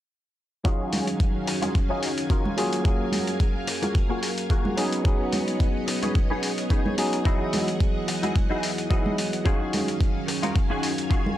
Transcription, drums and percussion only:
0.65 kick, closed hi-hat
0.93 open hi-hat, high conga
1.07 closed hi-hat
1.20 kick, closed hi-hat
1.47 open hi-hat
1.62 closed hi-hat, high conga
1.75 kick, closed hi-hat
2.03 open hi-hat
2.18 closed hi-hat
2.30 kick, closed hi-hat
2.45 high conga
2.58 open hi-hat
2.73 closed hi-hat
2.85 kick, closed hi-hat
3.12 open hi-hat, high conga
3.27 closed hi-hat
3.40 kick, closed hi-hat
3.67 open hi-hat
3.83 closed hi-hat, high conga
3.95 kick, closed hi-hat
4.23 open hi-hat
4.38 closed hi-hat
4.50 kick, closed hi-hat
4.65 high conga
4.78 open hi-hat
4.92 closed hi-hat
5.05 kick, closed hi-hat
5.33 open hi-hat, high conga
5.48 closed hi-hat
5.60 kick, closed hi-hat
5.88 open hi-hat
6.03 closed hi-hat, high conga
6.15 kick, closed hi-hat
6.43 open hi-hat
6.58 closed hi-hat
6.70 kick, closed hi-hat
6.86 high conga
6.98 open hi-hat
7.13 closed hi-hat
7.25 kick, closed hi-hat
7.53 open hi-hat, high conga
7.68 closed hi-hat
7.80 kick, closed hi-hat
8.08 open hi-hat
8.23 closed hi-hat, high conga
8.36 kick, closed hi-hat
8.63 open hi-hat
8.78 closed hi-hat
8.91 kick, closed hi-hat
9.06 high conga
9.18 open hi-hat
9.33 closed hi-hat
9.46 kick, closed hi-hat
9.73 open hi-hat, high conga
9.88 closed hi-hat
10.01 kick, closed hi-hat
10.28 open hi-hat
10.43 closed hi-hat, high conga
10.56 kick, closed hi-hat
10.83 open hi-hat
10.98 closed hi-hat
11.11 kick, closed hi-hat
11.26 high conga

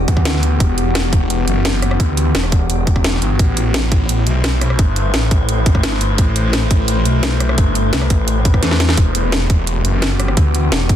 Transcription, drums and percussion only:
0.08 kick, closed hi-hat
0.17 kick, cross-stick
0.25 snare, closed hi-hat
0.34 snare
0.43 closed hi-hat
0.60 kick, closed hi-hat
0.78 closed hi-hat
0.95 snare, closed hi-hat
1.13 kick, closed hi-hat
1.30 closed hi-hat
1.48 closed hi-hat
1.65 snare, closed hi-hat
1.82 cross-stick, closed hi-hat
1.91 cross-stick
2.00 kick, closed hi-hat
2.17 closed hi-hat
2.35 snare, closed hi-hat
2.43 cross-stick
2.52 kick, closed hi-hat
2.70 closed hi-hat
2.87 kick, closed hi-hat
2.96 kick, cross-stick
3.04 snare, closed hi-hat
3.13 snare
3.22 closed hi-hat
3.39 kick, closed hi-hat
3.57 closed hi-hat
3.74 snare, closed hi-hat
3.92 kick, closed hi-hat
4.09 closed hi-hat
4.27 closed hi-hat
4.44 snare, closed hi-hat
4.61 cross-stick, closed hi-hat
4.70 cross-stick
4.79 kick, closed hi-hat
4.96 closed hi-hat
5.14 snare, closed hi-hat
5.31 kick, closed hi-hat
5.49 closed hi-hat
5.66 kick, closed hi-hat
5.75 kick, cross-stick
5.83 snare, closed hi-hat
5.92 snare
6.01 closed hi-hat
6.18 kick, closed hi-hat
6.36 closed hi-hat
6.53 snare, closed hi-hat
6.71 kick, closed hi-hat
6.88 closed hi-hat
7.05 closed hi-hat
7.23 snare, closed hi-hat
7.40 cross-stick, closed hi-hat
7.49 cross-stick
7.58 kick, closed hi-hat
7.75 closed hi-hat
7.93 snare, closed hi-hat
8.01 cross-stick
8.10 kick, closed hi-hat
8.28 closed hi-hat
8.45 kick, closed hi-hat
8.54 kick, cross-stick
8.63 snare, closed hi-hat
8.71 snare
8.80 snare, closed hi-hat
8.89 snare
8.97 kick, closed hi-hat
9.15 closed hi-hat
9.32 snare, closed hi-hat
9.50 kick, closed hi-hat
9.67 closed hi-hat
9.85 closed hi-hat
10.02 snare, closed hi-hat
10.20 cross-stick, closed hi-hat
10.28 cross-stick
10.37 kick, closed hi-hat
10.55 closed hi-hat
10.72 snare, closed hi-hat
10.89 kick, closed hi-hat

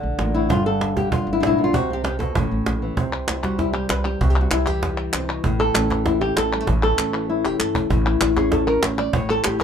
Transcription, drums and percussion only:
0.19 cajon slap
0.50 cajon bass
0.66 cajon slap
0.81 cajon slap
0.97 cajon bass
1.12 cajon bass
1.43 cajon slap
1.74 cajon bass
1.90 cajon slap
2.05 cajon slap
2.20 cajon bass
2.35 cajon bass
2.66 cajon slap
2.97 cajon bass
3.28 cajon slap, clap
3.44 cajon bass, cajon slap
3.59 cajon bass, cajon slap
3.90 cajon slap, clap
4.21 cajon bass
4.51 cajon slap, clap
4.67 cajon bass, cajon slap
4.83 cajon bass, cajon slap
5.13 cajon slap, clap
5.44 cajon bass
5.60 cajon slap
5.75 cajon slap, clap
5.90 cajon bass, cajon slap
6.06 cajon bass, cajon slap
6.37 cajon slap, clap
6.53 clap
6.67 cajon bass
6.98 cajon slap, clap
7.60 clap
7.75 cajon bass
7.90 cajon bass
8.21 cajon slap, clap
8.37 cajon bass, cajon slap
8.52 cajon bass, cajon slap
8.83 cajon slap, clap
9.13 cajon bass
9.29 cajon slap
9.44 cajon slap, clap
9.60 cajon bass, cajon slap

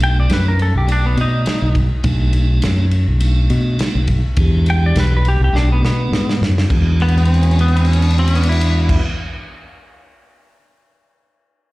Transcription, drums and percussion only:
0.00 ride
0.30 snare, ride
0.59 ride
0.88 ride
1.17 ride
1.46 snare, ride
1.75 kick, ride
2.04 kick, ride
2.33 ride
2.62 snare, ride
2.91 ride
3.21 ride
3.50 ride
3.79 snare, ride
4.07 kick, ride
4.37 kick, ride
4.66 ride
4.96 snare, ride
5.25 ride
5.55 snare
5.85 snare
6.13 snare
6.29 snare
6.43 snare
6.58 snare
6.70 kick, crash
7.00 crash
7.08 ride
7.17 crash
7.25 ride
7.34 crash
7.43 ride
7.51 crash
7.59 ride
7.68 crash
7.77 ride
7.85 crash
7.93 ride
8.02 crash
8.11 ride
8.18 crash
8.28 ride
8.35 crash
8.43 ride
8.52 crash
8.61 ride
8.89 kick, crash

